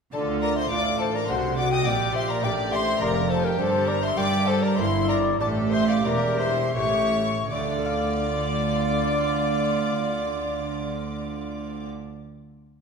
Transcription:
0.12 0.67 D2 medium
0.12 0.67 D3 medium
0.12 0.67 F4 medium
0.12 0.40 A4 medium
0.12 0.40 D5 medium
0.12 0.21 A5 medium
0.42 0.48 A#4 medium
0.42 0.57 D5 medium
0.42 0.56 A#5 loud
0.56 0.71 C5 medium
0.56 0.70 E5 medium
0.56 0.71 C6 loud
0.71 1.28 A1 medium
0.71 1.28 A2 medium
0.71 1.25 A2 medium
0.71 1.25 A3 soft
0.71 1.25 D4 medium
0.71 1.28 F4 medium
0.71 1.25 F4 medium
0.71 0.99 D5 loud
0.71 1.01 F5 loud
0.71 0.99 D6 loud
0.99 1.14 A4 medium
0.99 1.13 C5 medium
0.99 1.15 A5 loud
1.14 1.28 A#4 medium
1.14 1.28 D5 medium
1.14 1.29 A#5 loud
1.28 1.86 C2 medium
1.28 1.86 C3 medium
1.28 1.82 C3 medium
1.28 1.82 A3 soft
1.28 1.83 D4 soft
1.28 1.85 F#4 medium
1.28 1.83 F#4 medium
1.28 1.57 C5 medium
1.28 1.57 F#5 medium
1.28 1.58 C6 medium
1.57 1.63 D5 medium
1.57 1.73 F#5 loud
1.57 1.72 D6 loud
1.72 1.86 D#5 medium
1.72 1.85 G5 medium
1.72 1.87 D#6 loud
1.86 2.44 A#1 medium
1.86 2.44 A#2 medium
1.86 2.40 A#2 medium
1.86 2.43 G4 medium
1.86 2.15 D5 medium
1.86 2.14 G5 loud
1.86 2.15 D6 loud
2.14 2.29 C5 medium
2.14 2.21 E5 medium
2.14 2.29 C6 loud
2.29 2.43 A#4 medium
2.29 2.45 D5 medium
2.29 2.44 A#5 loud
2.43 3.01 A1 medium
2.43 3.01 A2 medium
2.43 2.97 A2 medium
2.43 2.97 A#3 medium
2.43 2.97 D4 medium
2.43 3.00 G4 medium
2.43 2.98 G4 medium
2.43 2.73 D5 loud
2.43 2.74 G5 medium
2.43 2.52 D6 medium
2.72 3.01 C5 loud
2.72 3.03 E5 loud
2.72 3.00 C6 loud
3.00 3.58 F1 medium
3.00 3.58 F2 medium
3.00 3.55 F2 medium
3.00 3.55 A#3 medium
3.00 3.55 D4 medium
3.00 3.58 G4 medium
3.00 3.55 G4 medium
3.00 3.29 A#4 loud
3.00 3.31 D5 medium
3.00 3.29 A#5 loud
3.29 3.44 A4 medium
3.29 3.46 C5 loud
3.29 3.44 A5 loud
3.44 3.58 G4 medium
3.44 3.60 A#4 medium
3.44 3.59 G5 loud
3.58 4.16 G1 medium
3.58 4.16 G2 loud
3.58 4.13 G2 medium
3.58 4.16 G4 medium
3.58 3.87 A4 loud
3.58 3.90 C5 loud
3.58 3.88 A5 loud
3.87 4.02 A#4 medium
3.87 4.02 D5 medium
3.87 4.02 A#5 loud
4.01 4.07 C5 medium
4.01 4.19 E5 loud
4.01 4.18 C6 loud
4.16 4.76 G2 medium
4.16 4.74 G3 medium
4.16 4.76 G3 medium
4.16 4.74 A#3 medium
4.16 4.74 D4 medium
4.16 4.76 G4 medium
4.16 4.74 G4 medium
4.16 4.46 D5 loud
4.16 4.49 G5 loud
4.16 4.47 D6 loud
4.46 4.61 A4 loud
4.46 4.64 C5 loud
4.46 4.62 A5 loud
4.61 4.77 A#4 medium
4.61 4.79 D5 medium
4.61 4.78 A#5 loud
4.76 5.40 G1 loud
4.76 5.40 G2 loud
4.76 5.36 G2 medium
4.76 5.36 A#3 medium
4.76 5.39 E4 medium
4.76 5.37 E4 medium
4.76 5.37 G4 medium
4.76 4.84 C5 medium
4.76 5.10 E5 medium
4.76 5.09 C6 loud
5.08 5.16 A#4 loud
5.08 5.40 D5 loud
5.08 5.17 A#5 loud
5.39 6.04 A1 medium
5.39 6.04 A2 loud
5.39 6.02 A2 medium
5.39 6.73 G4 medium
5.39 5.71 A4 medium
5.39 5.47 D5 loud
5.39 5.48 A5 loud
5.72 5.88 C5 loud
5.72 5.88 E5 loud
5.72 5.89 C6 loud
5.88 5.95 D5 medium
5.88 6.07 F5 medium
5.88 6.06 D6 loud
6.04 6.74 E1 medium
6.04 6.74 E2 medium
6.04 6.71 E2 medium
6.04 6.71 D4 medium
6.04 6.72 E4 medium
6.04 6.72 G4 medium
6.04 6.38 A#4 loud
6.04 6.41 D5 loud
6.04 6.40 A#5 medium
6.39 6.75 C5 medium
6.39 6.75 E5 medium
6.39 6.76 C6 medium
6.74 7.49 A1 medium
6.74 7.49 A2 medium
6.74 7.46 A2 medium
6.74 7.46 A3 medium
6.74 7.46 E4 soft
6.74 7.23 G4 medium
6.74 7.47 G4 medium
6.74 7.48 C#5 medium
6.74 7.49 E5 medium
6.74 7.49 C#6 loud
7.49 11.85 D2 medium
7.49 11.85 D3 medium
7.49 11.86 D3 medium
7.49 11.85 F4 medium
7.49 11.84 D5 medium
7.49 11.85 D5 medium
7.49 11.85 D6 medium
7.57 11.92 A3 medium
7.65 7.78 D4 medium
7.72 12.07 F4 medium
7.78 12.13 A4 medium
7.86 12.20 F5 medium

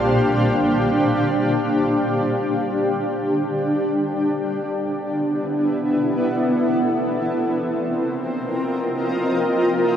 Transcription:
0.00 2.14 A#2 medium
0.00 5.45 D4 medium
0.00 4.51 G4 medium
0.00 4.51 C5 medium
0.00 4.51 F5 medium
4.51 6.88 B3 medium
4.67 6.88 E4 medium
6.87 9.95 C4 medium
7.37 9.97 A#4 medium
7.47 9.97 F4 medium
7.94 9.97 D#5 medium
7.94 9.97 G5 medium

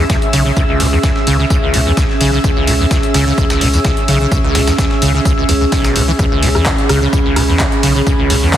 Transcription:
0.00 8.57 C#4 medium
0.00 8.57 G#4 medium
0.00 8.57 E5 medium
0.00 6.75 E6 medium
0.10 0.16 C#2 loud
0.10 kick loud
0.10 snare loud
0.10 tambourine medium
0.22 closed hi-hat soft
0.33 0.51 B1 loud
0.33 0.43 C#3 loud
0.33 open hi-hat loud
0.33 tambourine medium
0.46 0.52 C#3 medium
0.57 0.63 C#2 loud
0.57 kick loud
0.57 tambourine medium
0.69 0.82 C#2 medium
0.80 0.98 C#2 medium
0.80 0.87 C#3 medium
0.80 snare soft
0.80 open hi-hat medium
0.80 open hi-hat loud
0.93 0.99 E2 medium
1.03 1.10 C#2 loud
1.03 kick loud
1.03 snare loud
1.03 tambourine medium
1.16 snare soft
1.27 1.45 C#2 medium
1.27 1.37 C#3 loud
1.27 open hi-hat medium
1.27 tambourine medium
1.39 1.45 C#3 medium
1.39 snare soft
1.50 1.57 C#2 loud
1.50 kick loud
1.50 tambourine medium
1.63 1.75 C#2 medium
1.74 1.92 C#2 medium
1.74 1.81 C#3 medium
1.74 open hi-hat loud
1.74 tambourine medium
1.86 1.92 E2 medium
1.97 2.04 C#2 loud
1.97 kick loud
1.97 snare loud
1.97 tambourine medium
2.10 snare soft
2.21 2.38 B1 medium
2.21 2.31 C#3 loud
2.21 open hi-hat loud
2.21 tambourine medium
2.33 2.39 C#3 medium
2.44 2.51 C#2 loud
2.44 kick loud
2.44 tambourine medium
2.56 2.69 C#2 medium
2.67 2.85 C#2 medium
2.67 2.74 C#3 medium
2.67 open hi-hat loud
2.67 tambourine medium
2.80 2.86 E2 medium
2.91 2.98 C#2 loud
2.91 kick loud
2.91 snare loud
2.91 tambourine medium
3.03 closed hi-hat soft
3.14 3.32 C#2 loud
3.14 3.25 C#3 loud
3.14 snare loud
3.14 open hi-hat medium
3.14 tambourine medium
3.27 3.33 C#3 medium
3.27 snare soft
3.38 3.45 C#2 loud
3.38 kick loud
3.38 tambourine medium
3.50 3.63 C#2 medium
3.50 snare loud
3.50 tambourine medium
3.61 3.79 C#2 medium
3.61 3.68 C#3 medium
3.61 snare soft
3.61 open hi-hat loud
3.73 3.80 E2 medium
3.73 tambourine medium
3.85 3.92 C#2 loud
3.85 kick loud
3.85 snare loud
3.85 tambourine medium
3.97 closed hi-hat soft
4.08 4.26 B1 loud
4.08 4.18 C#3 loud
4.08 open hi-hat loud
4.08 tambourine medium
4.21 4.27 C#3 medium
4.32 4.38 C#2 loud
4.32 kick loud
4.32 tambourine medium
4.44 4.57 C#2 medium
4.55 4.73 C#2 loud
4.55 4.62 C#3 medium
4.55 snare loud
4.55 open hi-hat loud
4.55 tambourine medium
4.67 4.73 E2 medium
4.67 snare loud
4.67 tambourine medium
4.78 4.85 C#2 loud
4.78 kick loud
4.78 snare loud
4.78 tambourine medium
4.91 snare soft
5.02 5.20 C#2 medium
5.02 5.12 C#3 loud
5.02 open hi-hat medium
5.02 tambourine medium
5.14 5.20 C#3 medium
5.14 snare soft
5.25 5.32 C#2 loud
5.25 kick loud
5.25 tambourine medium
5.38 5.44 C#2 medium
5.49 5.67 C#2 medium
5.49 5.53 E2 loud
5.49 open hi-hat loud
5.49 tambourine medium
5.61 5.65 C#2 medium
5.72 5.97 B1 medium
5.72 kick loud
5.72 snare loud
5.72 open hi-hat medium
5.72 tambourine medium
5.85 snare loud
5.85 tambourine medium
5.96 6.14 C#2 medium
5.96 6.02 C#3 loud
5.96 open hi-hat loud
5.96 tambourine medium
6.08 6.12 E3 loud
6.19 6.26 C#2 loud
6.19 kick loud
6.19 tambourine medium
6.31 6.44 C#2 medium
6.42 6.60 C#2 loud
6.42 6.49 C#3 medium
6.42 open hi-hat loud
6.42 tambourine medium
6.55 6.67 E2 medium
6.55 cross-stick medium
6.66 6.73 C#2 medium
6.66 kick loud
6.66 snare loud
6.66 clap loud
6.66 tambourine medium
6.73 8.57 B5 medium
6.78 closed hi-hat soft
6.89 7.07 C#2 medium
6.89 7.00 C#3 loud
6.89 cross-stick medium
6.89 snare medium
6.89 open hi-hat loud
6.89 tambourine medium
7.02 7.08 C#3 medium
7.13 7.20 C#2 loud
7.13 kick loud
7.13 tambourine medium
7.25 7.38 C#2 medium
7.36 7.54 C#2 medium
7.36 7.43 C#3 medium
7.36 cross-stick medium
7.36 open hi-hat loud
7.36 tambourine medium
7.49 7.61 E2 medium
7.59 7.67 C#2 medium
7.59 kick loud
7.59 snare loud
7.59 clap loud
7.59 tambourine medium
7.72 closed hi-hat soft
7.83 8.01 B1 loud
7.83 7.93 C#3 loud
7.83 open hi-hat loud
7.83 tambourine medium
7.96 8.02 C#3 medium
8.07 8.13 C#2 medium
8.07 kick loud
8.07 tambourine medium
8.19 8.32 C#2 medium
8.30 8.48 C#2 medium
8.30 8.37 C#3 medium
8.30 snare soft
8.30 open hi-hat loud
8.30 open hi-hat medium
8.42 8.55 E2 medium
8.42 8.57 F#5 medium
8.53 8.57 C#2 medium
8.53 kick loud
8.53 snare loud
8.53 clap loud
8.53 tambourine medium

